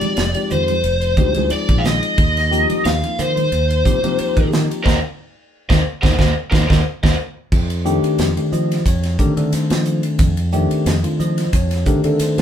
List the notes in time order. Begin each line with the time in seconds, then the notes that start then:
Already playing: F3 G#3 C4 D#4 G4 D5
0.01 ride, high conga
0.17 F1, snare, ride
0.34 F3 G#3 C4 D#4 G4, ride
0.50 F2 C5, hi-hat pedal, low conga
0.68 ride, high conga
0.84 F1 D#4 G4, ride
1.01 ride
1.16 D2 F3 G#3 C4 D#4 G4, kick, hi-hat pedal, high conga
1.34 D2 F3 G#3 C4 D#4 G#4, ride, high conga
1.50 D5, muted fingered electric bass stroke, ride
1.69 A#1, kick, ride
1.78 F5
1.85 D#5, snare, hi-hat pedal, low conga
2.03 ride
2.18 D#2, kick, ride
2.37 snare, ride
2.51 F3 A#3 C4 D#4 G4, hi-hat pedal
2.70 ride, high conga
2.85 D#2 F5, snare, ride
3.03 F3 A#3 C4 D#4 F4, ride
3.19 D#3 C5, hi-hat pedal, low conga
3.37 ride, high conga
3.52 D#2 D#4 G4, ride
3.70 ride
3.85 C3 F3 A#3 C4 D#4 G4, kick, hi-hat pedal, high conga
4.04 C3 F3 A#3 C4 D#4 G4, ride, high conga
4.19 muted fingered electric bass stroke, ride
4.37 D#3, kick, ride
4.52 snare, hi-hat pedal, low conga
4.71 ride
4.84 D#2 A#3 C4 D#4 A#4 C5 D#5, kick, snare, low conga
5.69 D#2 A#3 C4 D#4 A#4 C5 D#5, kick, snare, low conga
6.02 D#2 A#3 C4 D#4 A#4 C5 D#5, kick, snare, low conga
6.18 D#2 A#3 C4 D#4 A#4 C5 D#5, kick, snare, low conga
6.51 D#2 A#3 C4 D#4 A#4 C5 D#5, kick, snare, low conga
6.69 D#2 A#3 C4 D#4 A#4 C5 D#5, kick, snare, low conga
7.03 D#2 A#3 C4 D#4 A#4 C5 D#5, kick, snare, low conga
7.52 F2, kick, crash
7.70 ride
7.85 D#3 A3 C4 D4 G4, hi-hat pedal
8.03 muted fingered electric bass stroke, ride
8.19 F2, snare, hi-hat pedal, ride
8.37 D#3 A3 C4 D4 G4, ride
8.52 F3 D#5, hi-hat pedal
8.72 snare, ride
8.85 F2 D4 F4 C#5, kick, hi-hat pedal, ride
9.03 snare, ride
9.19 D3 D#3 A3 C4 D4 G4 A#4, kick, hi-hat pedal
9.37 D3 D#3 A3 C4 D4 A4, ride
9.53 C5, muted fingered electric bass stroke, snare, hi-hat pedal, ride
9.70 F3, snare, ride
9.85 hi-hat pedal
10.03 ride
10.19 F2, kick, hi-hat pedal, ride
10.37 ride
10.52 D#3 A3 C4 D4 G4, hi-hat pedal
10.71 muted fingered electric bass stroke, ride
10.86 F2, snare, hi-hat pedal, ride
11.03 D#3 A3 C4 D4 F4, ride
11.20 F3 D#5, hi-hat pedal
11.38 snare, ride
11.53 F2 D4 F4 C#5, kick, hi-hat pedal, ride
11.71 snare, ride
11.86 D3 D#3 A3 C4 D4 G4 A#4, kick, hi-hat pedal
12.04 D3 D#3 A3 C4 D4 A4, ride
12.19 C5, muted fingered electric bass stroke, snare, hi-hat pedal, ride
12.38 F3, ride